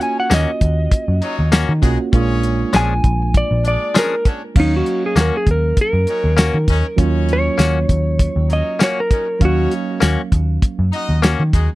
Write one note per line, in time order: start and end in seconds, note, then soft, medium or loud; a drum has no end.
0.00 1.78 A#3 medium
0.00 0.31 C#4 medium
0.00 1.78 C#4 medium
0.00 0.31 D#4 medium
0.00 1.79 F4 medium
0.00 1.79 F#4 medium
0.00 0.31 C#5 medium
0.00 0.18 G#5 medium
0.00 closed hi-hat medium
0.20 0.32 F#5 medium
0.30 0.45 D#2 loud
0.30 0.50 A#3 medium
0.30 0.50 C#4 medium
0.30 0.51 F#4 medium
0.30 1.50 D#5 loud
0.30 snare loud
0.30 closed hi-hat medium
0.30 tambourine loud
0.61 0.86 D#2 medium
0.61 kick medium
0.61 closed hi-hat medium
0.92 kick medium
0.92 closed hi-hat medium
1.08 1.20 F#2 medium
1.21 1.52 F#3 medium
1.21 1.52 C#4 medium
1.21 1.52 D#4 medium
1.21 1.52 C#5 medium
1.21 closed hi-hat medium
1.39 1.64 D#2 loud
1.52 1.71 A#3 medium
1.52 1.72 C#4 loud
1.52 1.72 F#4 loud
1.52 snare loud
1.52 closed hi-hat medium
1.52 tambourine loud
1.69 1.80 D#3 loud
1.82 1.96 B1 loud
1.82 1.98 G#3 medium
1.82 2.12 A#3 medium
1.82 2.13 C#4 medium
1.82 1.98 D#4 medium
1.82 2.13 F4 medium
1.82 1.98 F#4 medium
1.82 2.13 F#4 medium
1.82 1.98 G#4 medium
1.82 kick medium
1.82 closed hi-hat medium
2.12 2.63 A#1 loud
2.12 4.51 G#3 medium
2.12 4.52 A#3 medium
2.12 2.74 C#4 medium
2.12 4.52 D4 medium
2.12 4.53 F4 medium
2.12 2.74 G#4 medium
2.12 2.74 C#5 loud
2.12 kick loud
2.12 closed hi-hat medium
2.43 closed hi-hat medium
2.73 2.99 A#1 loud
2.73 2.93 F3 medium
2.73 2.93 C#4 medium
2.73 2.93 D4 medium
2.73 2.93 G#4 medium
2.73 3.34 G#5 loud
2.73 snare loud
2.73 closed hi-hat medium
2.73 tambourine medium
3.04 3.43 A#1 medium
3.04 kick medium
3.04 closed hi-hat medium
3.34 3.65 D5 loud
3.34 kick medium
3.34 closed hi-hat medium
3.51 3.76 A#1 medium
3.64 3.95 D4 medium
3.64 3.95 G#4 medium
3.64 3.95 D5 medium
3.64 3.96 D5 medium
3.64 closed hi-hat medium
3.95 4.14 F3 medium
3.95 4.14 C#4 medium
3.95 4.14 D4 medium
3.95 4.15 G#4 medium
3.95 snare loud
3.95 closed hi-hat medium
3.95 tambourine loud
3.99 4.26 A#4 loud
4.24 4.41 C#4 medium
4.24 4.40 D4 medium
4.24 4.41 G#4 medium
4.24 4.41 C#5 medium
4.24 kick medium
4.24 closed hi-hat medium
4.55 4.81 D#2 medium
4.55 6.94 F#3 medium
4.55 6.94 A#3 medium
4.55 6.95 C#4 medium
4.55 5.17 C#4 medium
4.55 5.16 D#4 medium
4.55 5.17 C#5 medium
4.55 6.95 F5 medium
4.55 kick loud
4.55 crash loud
4.60 4.74 D#4 medium
4.77 5.04 F#4 medium
4.86 closed hi-hat medium
5.06 5.18 G#4 medium
5.16 5.30 D#2 medium
5.16 5.35 A#3 medium
5.16 5.36 C#4 medium
5.16 5.36 F#4 medium
5.16 snare loud
5.16 closed hi-hat medium
5.16 tambourine medium
5.21 5.34 A#4 medium
5.37 5.48 G#4 medium
5.47 5.72 D#2 medium
5.47 kick medium
5.47 closed hi-hat medium
5.51 5.78 A#4 medium
5.77 kick medium
5.77 closed hi-hat medium
5.81 6.97 A#4 medium
5.93 6.05 F#2 medium
6.07 6.38 C#4 medium
6.07 6.38 D#4 medium
6.07 6.38 F#4 medium
6.07 6.38 C#5 medium
6.07 closed hi-hat medium
6.24 6.49 D#2 medium
6.37 6.56 A#3 medium
6.37 6.57 C#4 medium
6.37 6.57 F#4 medium
6.37 snare loud
6.37 closed hi-hat medium
6.37 tambourine loud
6.54 6.65 D#3 loud
6.68 6.81 D#2 medium
6.68 6.85 C#4 medium
6.68 6.84 D#4 medium
6.68 6.85 F#4 medium
6.68 6.85 C#5 medium
6.68 kick medium
6.68 closed hi-hat medium
6.96 7.48 D#2 loud
6.96 9.36 F#3 medium
6.96 9.36 A#3 medium
6.96 9.37 C#4 medium
6.96 7.59 C#4 medium
6.96 7.59 D#4 medium
6.96 9.37 F4 medium
6.96 7.59 C#5 medium
6.96 kick loud
6.96 closed hi-hat medium
7.29 closed hi-hat medium
7.33 8.48 C#5 medium
7.58 7.84 D#2 medium
7.58 7.77 A#3 medium
7.58 7.78 C#4 medium
7.58 7.78 F#4 medium
7.58 snare medium
7.58 closed hi-hat medium
7.58 tambourine loud
7.89 8.28 D#2 medium
7.89 kick medium
7.89 closed hi-hat medium
8.19 kick medium
8.19 closed hi-hat medium
8.36 8.61 D#2 medium
8.49 8.80 F#3 medium
8.49 8.80 C#4 medium
8.49 8.80 D#4 medium
8.49 8.80 C#5 medium
8.49 closed hi-hat medium
8.53 8.81 D#5 medium
8.79 8.99 A#3 medium
8.79 8.99 C#4 medium
8.79 9.00 F#4 medium
8.79 snare loud
8.79 closed hi-hat medium
8.79 tambourine loud
8.83 8.98 C#5 medium
9.00 9.41 A#4 medium
9.10 9.27 C#4 medium
9.10 9.26 D#4 medium
9.10 9.27 F#4 medium
9.10 9.27 C#5 medium
9.10 kick medium
9.10 closed hi-hat medium
9.39 9.66 D#2 loud
9.39 11.75 F#3 medium
9.39 11.75 A#3 medium
9.39 10.02 C#4 medium
9.39 11.75 C#4 medium
9.39 10.01 D#4 medium
9.39 10.02 C#5 medium
9.39 11.75 F5 medium
9.39 kick loud
9.39 closed hi-hat medium
9.45 9.72 F#4 medium
9.71 closed hi-hat medium
10.00 10.15 D#2 medium
10.00 10.20 A#3 medium
10.00 10.21 C#4 medium
10.00 10.21 F#4 medium
10.00 snare loud
10.00 closed hi-hat medium
10.00 tambourine medium
10.32 10.57 D#2 medium
10.32 kick medium
10.32 closed hi-hat medium
10.62 kick medium
10.62 closed hi-hat medium
10.79 10.90 F#2 medium
10.92 11.23 D#4 medium
10.92 11.23 F#4 medium
10.92 11.23 D#5 loud
10.92 closed hi-hat medium
11.09 11.34 D#2 medium
11.22 11.42 A#3 medium
11.22 11.42 C#4 loud
11.22 11.43 F#4 medium
11.22 snare loud
11.22 closed hi-hat medium
11.22 tambourine loud
11.40 11.51 D#3 loud
11.52 11.67 D#2 medium
11.52 11.69 G#3 medium
11.52 11.68 D#4 medium
11.52 11.69 F#4 medium
11.52 11.69 G#4 medium
11.52 kick medium
11.52 closed hi-hat medium